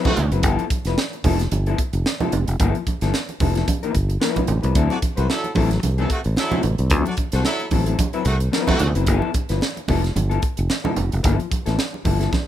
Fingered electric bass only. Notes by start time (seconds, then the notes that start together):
0.17 D2
0.32 F#1
0.43 G1
0.85 F1
1.24 F1
1.52 G1
1.93 F1
2.33 F1
2.48 F1
2.60 G1
3.02 G1
3.41 F1
3.95 G1
4.49 A1
4.64 C2
4.75 D2
5.18 C2
5.56 A1
5.84 C2
6.26 A1
6.64 A1
6.79 C2
6.91 D2
7.33 C2
7.72 A1
8.26 C2
8.80 D2
8.96 F#1
9.08 G1
9.50 G1
9.89 F1
10.16 G1
10.59 F1
10.98 F1
11.13 F1
11.25 G1
11.67 A1
12.05 G1